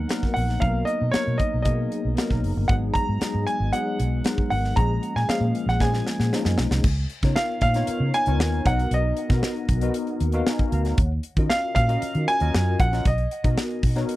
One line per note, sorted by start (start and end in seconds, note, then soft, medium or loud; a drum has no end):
0.00 0.09 F#3 medium
0.00 0.09 A#3 medium
0.00 0.09 B3 medium
0.00 0.10 D#4 medium
0.00 0.10 A#4 medium
0.00 0.32 F#5 medium
0.09 0.41 F#3 medium
0.09 0.41 A#3 medium
0.09 0.41 B3 medium
0.09 0.42 D#4 medium
0.09 0.42 A#4 medium
0.09 snare loud
0.09 closed hi-hat medium
0.23 kick medium
0.23 snare soft
0.34 0.57 A#1 medium
0.34 0.62 F#5 medium
0.34 open hi-hat medium
0.49 snare soft
0.60 0.82 B1 loud
0.60 0.93 F#3 medium
0.60 0.93 A#3 medium
0.60 0.93 B3 medium
0.60 0.93 D#4 medium
0.60 0.93 A#4 medium
0.60 0.85 F5 medium
0.60 kick loud
0.60 closed hi-hat medium
0.85 1.13 D#5 medium
0.85 closed hi-hat medium
1.01 1.11 B2 medium
1.11 1.45 F#3 medium
1.11 1.45 A#3 medium
1.11 1.45 B3 medium
1.11 1.45 D#4 medium
1.11 1.45 A#4 medium
1.11 1.37 C#5 medium
1.11 snare loud
1.11 closed hi-hat medium
1.15 muted fingered electric bass stroke soft
1.27 1.37 B2 medium
1.38 1.61 D#5 medium
1.38 kick medium
1.38 closed hi-hat medium
1.54 1.64 B1 medium
1.62 1.86 B2 loud
1.62 1.97 F#3 medium
1.62 1.97 A#3 medium
1.62 1.97 B3 medium
1.62 1.97 D#4 medium
1.62 1.97 G#4 medium
1.62 2.38 D#5 medium
1.62 kick medium
1.62 closed hi-hat medium
1.92 closed hi-hat medium
2.05 2.15 B1 medium
2.17 2.49 F#3 medium
2.17 2.49 A#3 medium
2.17 2.49 B3 medium
2.17 2.49 D#4 medium
2.17 2.50 A#4 medium
2.17 snare loud
2.17 closed hi-hat medium
2.30 2.41 B1 medium
2.30 kick medium
2.30 snare soft
2.43 2.54 F#1 medium
2.43 open hi-hat medium
2.57 2.67 G1 loud
2.68 2.90 G#1 loud
2.68 3.01 F#3 medium
2.68 3.01 G#3 medium
2.68 3.01 B3 medium
2.68 3.01 D#4 medium
2.68 3.02 G#4 medium
2.68 2.74 F#5 medium
2.68 kick loud
2.68 closed hi-hat medium
2.94 3.43 A#5 loud
2.94 kick medium
2.94 closed hi-hat medium
3.09 3.19 G#2 medium
3.21 3.53 F#3 medium
3.21 3.53 G#3 medium
3.21 3.53 B3 medium
3.21 3.53 D#4 medium
3.21 3.53 G#4 medium
3.21 muted fingered electric bass stroke soft
3.21 snare loud
3.21 closed hi-hat medium
3.34 3.45 G#2 medium
3.47 3.74 G#5 medium
3.47 closed hi-hat medium
3.60 3.70 G#1 medium
3.72 4.04 F#3 medium
3.72 4.05 G#3 medium
3.72 4.05 B3 medium
3.72 4.05 D#4 medium
3.72 4.05 G#4 medium
3.72 4.49 F#5 medium
3.72 closed hi-hat medium
4.00 4.20 B1 medium
4.00 closed hi-hat medium
4.24 4.56 F#3 medium
4.24 4.57 G#3 medium
4.24 4.57 B3 medium
4.24 4.57 D#4 medium
4.24 4.57 A#4 medium
4.24 snare loud
4.24 closed hi-hat medium
4.38 kick medium
4.50 4.72 G#1 medium
4.50 4.78 F#5 medium
4.50 open hi-hat medium
4.64 snare soft
4.76 4.97 A#1 loud
4.76 5.08 F3 medium
4.76 5.08 G#3 medium
4.76 5.08 A#3 medium
4.76 5.08 C#4 medium
4.76 5.09 G#4 medium
4.76 5.17 A#5 loud
4.76 kick loud
4.76 closed hi-hat medium
5.03 closed hi-hat medium
5.16 5.26 A#2 medium
5.16 5.28 G#5 medium
5.16 snare soft
5.28 5.60 F3 medium
5.28 5.60 G#3 medium
5.28 5.60 A#3 medium
5.28 5.61 C#4 medium
5.28 5.61 G#4 medium
5.28 5.65 F5 medium
5.28 muted fingered electric bass stroke soft
5.28 snare loud
5.28 closed hi-hat medium
5.41 5.51 A#2 loud
5.55 closed hi-hat medium
5.66 5.77 A#1 medium
5.66 5.82 F#5 medium
5.66 snare soft
5.80 6.01 A#2 loud
5.80 6.12 F3 medium
5.80 6.12 G#3 medium
5.80 6.12 A#3 medium
5.80 6.13 C#4 medium
5.80 6.13 G#4 medium
5.80 6.55 G#5 medium
5.80 kick loud
5.80 snare medium
5.94 snare medium
6.07 snare medium
6.20 6.30 A#2 medium
6.20 snare medium
6.33 6.64 F3 medium
6.33 6.64 G#3 medium
6.33 6.65 A#3 medium
6.33 6.65 C#4 medium
6.33 6.65 D#4 loud
6.33 snare medium
6.45 6.56 F#2 medium
6.45 snare medium
6.58 6.68 B1 medium
6.58 snare loud
6.71 6.81 C2 loud
6.71 snare medium
6.84 7.05 C#2 loud
6.84 kick loud
6.84 crash loud
7.10 closed hi-hat medium
7.23 7.33 C#3 loud
7.23 7.55 B3 medium
7.23 7.55 D#4 medium
7.23 7.55 F4 medium
7.23 7.55 A#4 medium
7.23 7.55 C#5 medium
7.23 kick medium
7.23 snare soft
7.23 closed hi-hat medium
7.36 7.60 F5 medium
7.36 snare loud
7.61 7.82 A#2 medium
7.61 8.15 F5 loud
7.61 kick medium
7.61 closed hi-hat medium
7.74 8.06 B3 medium
7.74 8.07 D#4 medium
7.74 8.07 F4 medium
7.74 8.07 A#4 medium
7.74 8.07 C#5 loud
7.74 snare soft
7.74 closed hi-hat medium
7.87 muted fingered electric bass stroke soft
7.87 closed hi-hat loud
8.00 8.11 C#3 medium
8.14 8.67 G#5 loud
8.14 closed hi-hat medium
8.26 8.39 C#2 medium
8.26 8.58 B3 medium
8.26 8.58 D#4 medium
8.26 8.59 F4 medium
8.26 8.59 A#4 medium
8.26 8.59 C#5 medium
8.26 closed hi-hat soft
8.39 8.60 D#2 medium
8.39 snare loud
8.52 closed hi-hat soft
8.65 8.86 B1 loud
8.65 9.17 B3 medium
8.65 9.17 D#4 medium
8.65 9.17 F#4 medium
8.65 9.17 A#4 medium
8.65 8.72 C#5 medium
8.65 8.93 F#5 medium
8.65 kick loud
8.65 closed hi-hat medium
8.72 9.21 D#5 medium
8.79 closed hi-hat soft
8.91 9.11 B1 loud
8.91 9.92 D#5 medium
8.91 closed hi-hat medium
9.17 closed hi-hat medium
9.29 9.40 B2 loud
9.29 9.61 B3 medium
9.29 9.61 D#4 medium
9.29 9.61 F#4 medium
9.29 9.62 A#4 medium
9.29 9.62 F#5 medium
9.29 kick loud
9.29 snare soft
9.29 closed hi-hat soft
9.43 snare loud
9.56 closed hi-hat soft
9.69 9.89 B1 medium
9.69 kick medium
9.69 closed hi-hat medium
9.81 10.13 B3 medium
9.81 10.13 D#4 medium
9.81 10.14 F#4 medium
9.81 10.14 A#4 medium
9.81 10.14 D#5 loud
9.81 closed hi-hat medium
9.94 closed hi-hat loud
10.07 closed hi-hat soft
10.20 10.41 D#2 medium
10.20 closed hi-hat medium
10.32 10.65 B3 medium
10.32 10.65 D#4 medium
10.32 10.65 F#4 medium
10.32 10.65 A#4 loud
10.32 10.47 F5 loud
10.32 closed hi-hat soft
10.47 10.72 D#5 medium
10.47 10.71 G#5 medium
10.47 snare loud
10.59 kick medium
10.59 closed hi-hat soft
10.72 10.93 D2 medium
10.72 10.86 F5 medium
10.72 10.85 A#5 medium
10.72 closed hi-hat medium
10.85 11.11 C#5 medium
10.85 11.10 F#5 medium
10.85 snare soft
10.85 closed hi-hat medium
10.98 11.19 D#2 loud
10.98 kick loud
10.98 closed hi-hat medium
11.23 closed hi-hat medium
11.37 11.47 D#3 loud
11.37 11.69 C#4 medium
11.37 11.69 F4 medium
11.37 11.69 F#4 medium
11.37 11.69 A#4 medium
11.37 11.69 D#5 medium
11.37 kick loud
11.37 closed hi-hat soft
11.50 11.73 F5 loud
11.50 snare loud
11.75 11.96 A#2 loud
11.75 12.24 F5 loud
11.75 kick medium
11.75 closed hi-hat medium
11.88 12.20 C#4 medium
11.88 12.20 F#4 medium
11.88 12.21 A#4 medium
11.88 12.21 D#5 medium
11.88 12.20 F5 medium
11.88 closed hi-hat medium
12.02 muted fingered electric bass stroke soft
12.02 closed hi-hat medium
12.15 12.25 D#3 medium
12.15 closed hi-hat soft
12.28 12.81 G#5 loud
12.28 closed hi-hat medium
12.40 12.51 D#2 medium
12.40 12.72 C#4 medium
12.40 12.72 F4 medium
12.40 12.72 F#4 medium
12.40 12.73 A#4 medium
12.40 12.73 D#5 medium
12.40 closed hi-hat soft
12.54 12.75 F#2 medium
12.54 snare loud
12.80 13.00 A#1 medium
12.80 13.04 F#5 loud
12.80 kick loud
12.80 closed hi-hat medium
12.92 13.05 C#4 medium
12.92 13.05 F4 medium
12.92 13.06 F#4 medium
12.92 13.06 A#4 medium
12.92 13.06 D#5 medium
12.92 snare soft
12.92 closed hi-hat medium
13.05 13.26 B1 loud
13.05 14.06 D#5 medium
13.05 kick loud
13.05 closed hi-hat medium
13.18 closed hi-hat soft
13.31 closed hi-hat medium
13.44 13.55 B2 loud
13.44 13.75 B3 medium
13.44 13.75 D#4 medium
13.44 13.76 F#4 medium
13.44 13.76 A#4 medium
13.44 13.76 D#5 loud
13.44 kick medium
13.44 closed hi-hat medium
13.58 snare loud
13.70 closed hi-hat soft
13.83 14.03 B2 medium
13.83 kick loud
13.83 open hi-hat medium
13.96 14.16 B3 medium
13.96 14.16 D#4 medium
13.96 14.16 F#4 medium
13.96 14.16 A#4 medium
13.96 14.16 C#5 medium
13.96 snare soft
13.96 closed hi-hat medium
14.09 closed hi-hat loud